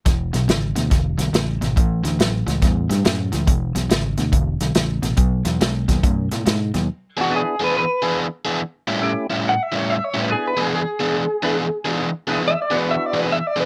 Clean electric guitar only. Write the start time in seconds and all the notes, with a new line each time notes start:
7.21 F#4
7.36 G#4
7.64 B4
7.77 B4
9.49 F#5
9.63 E5
9.76 C#5
9.90 E5
10.04 C#5
10.20 B4
10.32 G#4
10.47 B4
10.62 G#4
10.75 G#4
12.48 E5
12.62 D5
12.77 B4
12.91 E5
13.06 D5
13.19 B4
13.32 E5
13.47 D5
13.60 B4